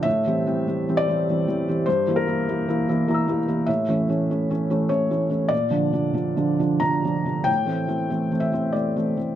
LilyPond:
<<
  \new Staff \with { instrumentName = "Felt piano" } { \time 3/4 \key a \phrygian \tempo 4 = 97 << { r2. | r2 <e'' bes'' e'''>4 | r2. | r2. |
r2. | } \\ { e''4. d''4. | c''8 bes'2 r8 | e''2 cis''4 | d''2 bes''4 |
g''4. e''8 d''4 | } >> }
  \new Staff \with { instrumentName = "Felt piano" } { \time 3/4 \key a \phrygian \tuplet 3/2 { a,8 <e g c'>8 <e g c'>8 <e g c'>8 <e g c'>8 <e g c'>8 <e g c'>8 <e g c'>8 <e g c'>8 } | \tuplet 3/2 { g,8 <e bes e'>8 <e bes e'>8 <e bes e'>8 <e bes e'>8 <e bes e'>8 <e bes e'>8 <e bes e'>8 <e bes e'>8 } | \tuplet 3/2 { a,8 <e a cis'>8 <e a cis'>8 <e a cis'>8 <e a cis'>8 <e a cis'>8 <e a cis'>8 <e a cis'>8 <e a cis'>8 } | \tuplet 3/2 { bes,8 <d f d'>8 <d f d'>8 <d f d'>8 <d f d'>8 <d f d'>8 <d f d'>8 <d f d'>8 <d f d'>8 } |
\tuplet 3/2 { a,8 <e a c'>8 <e a c'>8 <e a c'>8 <e a c'>8 <e a c'>8 <e a c'>8 <e a c'>8 <e a c'>8 } | }
>>